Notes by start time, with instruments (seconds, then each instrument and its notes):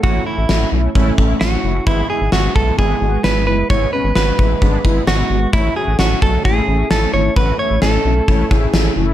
0.03 analog synth bass A1, analog polysynth A3 C#4 E4, clean electric guitar F#4, kick
0.26 analog polysynth A3 C#4 E4, clean electric guitar E4
0.38 analog synth bass A1
0.49 analog synth bass A1, analog polysynth A3 C#4 F#4, snare
0.72 analog synth bass B1, analog polysynth A3 C#4 E4
0.95 analog synth bass A1, analog polysynth A3 C#4 E4, kick
1.18 analog synth bass A1, analog polysynth A3 C#4 E4, kick
1.41 analog synth bass A1, analog polysynth C#4 E4, clean electric guitar F#4, snare
1.64 analog synth bass F#1, analog polysynth A3 C#4 E4
1.87 analog synth bass G#1, analog polysynth G#3 B3 E4, clean electric guitar E4, kick
2.10 analog polysynth G#3 B3 E4, clean electric guitar G#4
2.21 analog synth bass G#1
2.32 analog synth bass G#1, analog polysynth G#3 B3 E4, clean electric guitar F#4, snare
2.55 analog synth bass B1, analog polysynth G#3 B3 E4, clean electric guitar A4, kick
2.78 analog synth bass G#1, analog polysynth G#3 B3 E4, clean electric guitar G#4, kick
3.01 analog synth bass G#1, analog polysynth G#3 B3 F#4
3.24 analog synth bass G#1, analog polysynth G#3 B3 E4, clean electric guitar B4, snare
3.47 analog synth bass F#1, analog polysynth G#3 B3 E4, clean electric guitar B4
3.70 analog synth bass G#1, analog polysynth G#3 B3 E4, clean electric guitar C#5, kick
3.93 analog polysynth G#3 B3 C#4, clean electric guitar B4
4.04 analog synth bass G#1
4.15 analog synth bass G#1, analog polysynth G#3 B3 F#4, clean electric guitar B4, snare
4.39 analog synth bass A1, analog polysynth G#3 B3 E4, kick
4.62 analog synth bass G#1, analog polysynth G#3 B3 D4, kick
4.84 analog synth bass G#1, analog polysynth G#3 B3 E4, kick
5.07 analog synth bass G#1, analog polysynth G#3 B3 E4, clean electric guitar F#4, snare
5.30 analog synth bass G#1, analog polysynth G#3 B3 F#4
5.53 analog synth bass A1, analog polysynth A3 C#4 E4, clean electric guitar E4, kick
5.76 analog polysynth A3 C#4 F#4, clean electric guitar G#4
5.87 analog synth bass A1
5.99 analog synth bass A1, analog polysynth A3 C#4 E4, clean electric guitar F#4, snare
6.22 analog synth bass B1, analog polysynth A3 C#4 F#4, clean electric guitar A4, kick
6.45 analog synth bass A1, analog polysynth A3 C#4 E4, clean electric guitar G#4, kick
6.68 analog synth bass A1, analog polysynth A3 C#4 E4
6.91 analog synth bass A1, analog polysynth A3 C#4 E4, clean electric guitar A4, snare
7.13 analog synth bass G#1, analog polysynth A3 C#4 E4, clean electric guitar C#5
7.36 analog synth bass A1, analog polysynth A3 C#4 F#4, clean electric guitar B4, kick
7.59 analog polysynth A3 C#4 E4, clean electric guitar C#5
7.71 analog synth bass A1
7.82 analog synth bass A1, analog polysynth A3 C#4 E4, clean electric guitar A4, snare
8.05 analog synth bass B1, analog polysynth A3 C#4 E4
8.28 analog synth bass A1, analog polysynth A3 C#4 E4, kick
8.51 analog synth bass A1, analog polysynth A3 C#4 E4, kick
8.55 clean electric guitar G#4
8.74 analog synth bass A1, analog polysynth A3 C#4 E4, snare
8.96 analog synth bass F#1, analog polysynth A3 C#4 E4